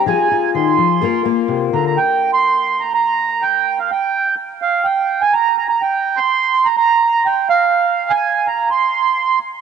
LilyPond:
<<
  \new Staff \with { instrumentName = "Accordion" } { \time 4/4 \key g \phrygian \tempo 4 = 125 aes''4 c'''4. r4 bes''16 bes''16 | g''8. c'''4 bes''16 bes''4 g''8. f''16 | g''4 r8 f''8 g''8. aes''16 bes''8 bes''16 bes''16 | g''8. c'''4 bes''16 bes''4 g''8 f''8~ |
f''8. aes''8. bes''8 c'''4. r8 | }
  \new Staff \with { instrumentName = "Steel-string acoustic guitar" } { \time 4/4 \key g \phrygian << { <f' aes'>8 f'4. <bes f' bes'>8 bes4.~ | bes1 | r1 | r1 |
r1 | } \\ { f4 ees8 f8 g,4 c8 d8 | r1 | r1 | r1 |
r1 | } >> }
>>